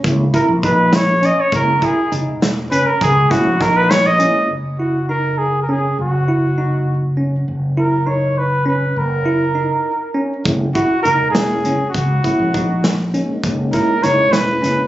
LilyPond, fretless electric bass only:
\new Staff \with { instrumentName = "Fretless electric bass" } { \clef bass \time 5/8 \key fis \mixolydian \tempo 4 = 101 cis,8 r16 ais,,4.~ ais,,16 | fis,,8 r8 fis,,16 e,,8. fis,,16 r16 | cis,8 r16 ais,,4.~ ais,,16 | fis,,2~ fis,,8 |
fis,,2~ fis,,8 | fis,,2~ fis,,8 | fis,,4~ fis,,16 r4 r16 | fis,,8 r8 fis,,16 e,,8. fis,,16 r16 |
cis,8 r16 ais,,4.~ ais,,16 | fis,,8 r8 fis,,16 e,,8. fis,,16 r16 | }